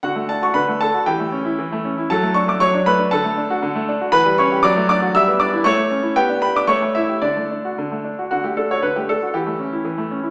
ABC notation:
X:1
M:2/4
L:1/16
Q:1/4=117
K:D
V:1 name="Grand piano"
[Ff]2 a c' [Bb]2 [Aa]2 | [Gg]6 z2 | [Aa]2 c' d' [cc']2 [Bb]2 | [Aa]6 z2 |
[Bb]2 [cc']2 [dd']2 [dd']2 | [ee']2 [dd']2 [cc']4 | [Gg]2 b d' [cc']2 [Ee]2 | [Dd]4 z4 |
F G A c B G A2 | G6 z2 |]
V:2 name="Grand piano"
D, A, D F D, A, D F | E, A, C E E, A, C E | F, A, D A, F, D A, D | D, A, D F D, A, D F |
E, G, C G F, A, D F | G, B, D E A, A, C E | B, D G D A, A,2 G | D, A, D F D, A, D F |
D, A, D F D, A, D F | E, A, C E E, A, C E |]